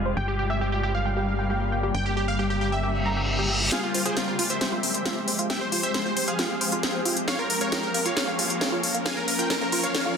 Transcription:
Already playing: F1
0.06 C5
0.17 G1 G4 G5
0.28 G4
0.39 G4 G5
0.50 G4 E5
0.61 G4
0.72 G4 G5
0.83 G4
0.95 F5
1.05 G5
1.17 G4
1.39 G5
1.50 G4
1.72 G5
1.83 G4
1.94 G1 G5
2.05 G4 G5
2.17 G4
2.28 F5
2.39 G4 G5
2.50 G4
2.61 G4
2.72 E5 G5
2.83 G4, reverse cymbal
3.06 A#5
3.17 G4
3.39 G4
3.50 G4
3.72 F4 G#4 F5, snare, closed hi-hat, riser
3.83 F4
3.94 F4 C5, open hi-hat
4.05 F4 G#4 C5, closed hi-hat
4.17 F4, snare, closed hi-hat
4.28 F4 C5
4.39 F4, open hi-hat
4.50 C5 E5, closed hi-hat
4.61 C5, snare, closed hi-hat
4.72 F4
4.83 open hi-hat
4.94 C5, closed hi-hat
5.05 F4, snare, closed hi-hat
5.28 C5, open hi-hat
5.39 F4, closed hi-hat
5.50 E5 G5, snare, closed hi-hat
5.61 C5
5.72 F4 C5, open hi-hat
5.83 C5 E5, closed hi-hat
5.94 C5, snare, closed hi-hat
6.05 F4 C5
6.17 C5, open hi-hat
6.28 G#4 C5 F5, closed hi-hat
6.39 F4, snare, closed hi-hat
6.61 C5, open hi-hat
6.72 F4, closed hi-hat
6.83 snare, closed hi-hat
6.94 C5
7.05 F4, open hi-hat
7.17 closed hi-hat
7.28 C#5 F5, snare, closed hi-hat
7.39 F4 A#4
7.50 A#4, open hi-hat
7.61 A#4 C#5 F5, closed hi-hat
7.72 F4 A#4, snare, closed hi-hat
7.83 A#4
7.94 A#4 F5, open hi-hat
8.05 F4 C#5 F5, closed hi-hat
8.17 snare, closed hi-hat
8.28 F5
8.39 F4, open hi-hat
8.50 closed hi-hat
8.61 F5, snare, closed hi-hat
8.72 F4
8.83 open hi-hat
8.94 F5, closed hi-hat
9.05 F4 F5 G#5, snare, closed hi-hat
9.17 A#4
9.28 A#4 F5, open hi-hat
9.39 F4 A#4 G5, closed hi-hat
9.50 A#4, snare, closed hi-hat
9.61 A#4 F5
9.72 F4 A#4, open hi-hat
9.83 C#5 F5, closed hi-hat
9.94 F5, snare, closed hi-hat
10.06 F4

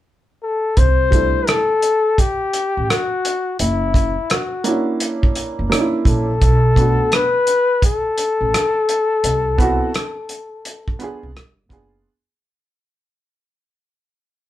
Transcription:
0.43 A4
0.77 C2 C5, kick, closed hi-hat
1.10 G3 A3 D4 E4, kick, closed hi-hat
1.47 A4, cross-stick, closed hi-hat
1.82 closed hi-hat
2.18 G4, kick, closed hi-hat
2.53 closed hi-hat
2.77 A1
2.90 F#4, cross-stick, closed hi-hat
3.25 closed hi-hat
3.59 F#1 E4, closed hi-hat
3.94 kick, closed hi-hat
4.30 F#4, cross-stick, closed hi-hat
4.64 A#3 C#4 D4 E4, closed hi-hat
5.00 closed hi-hat
5.23 kick
5.35 closed hi-hat
5.59 F#1
5.70 A#3 C#4 D4, cross-stick, closed hi-hat
5.74 D#4
5.80 E4
6.05 A#1 A4, kick, closed hi-hat
6.42 B1, kick, closed hi-hat
6.76 A3 B3 D4, kick, closed hi-hat
6.80 F#4
7.12 B4, cross-stick, closed hi-hat
7.47 closed hi-hat
7.82 A4, kick, closed hi-hat
8.18 closed hi-hat
8.41 A1
8.54 cross-stick, closed hi-hat
8.89 closed hi-hat
9.24 C2, closed hi-hat
9.58 B3 C4 E4 F#4, kick, closed hi-hat
9.94 cross-stick, closed hi-hat
10.29 closed hi-hat
10.65 closed hi-hat
10.88 kick
10.99 B3 D4 F4, closed hi-hat
11.03 G#4
11.23 C2
11.36 G1, cross-stick, closed hi-hat
11.69 F#1 B3 D4 F4 G#4, kick, closed hi-hat

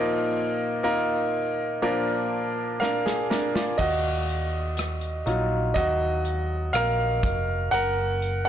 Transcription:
Already playing: A#2 F3 A#3 D#4 F4 A#4
0.83 A#3 D#4 F4 A#4
1.82 A#2 F3 A#3 D4 F4 A#4
2.80 D4 A#4 F5, snare
3.06 G#4, snare
3.30 D4 A#4, snare
3.55 F4 D5, snare
3.78 D#2 F#4 D#5, kick, crash
4.29 closed hi-hat
4.77 cross-stick, closed hi-hat
5.01 closed hi-hat
5.26 A#1 F#3 D#4 F4, cross-stick, closed hi-hat
5.74 D#2 F#4 D#5, kick, closed hi-hat
6.25 closed hi-hat
6.73 A#1 A#4 F5, cross-stick, closed hi-hat
7.23 F1, kick, closed hi-hat
7.71 F#1 A#4 F#5, closed hi-hat
8.22 closed hi-hat
8.45 F#5

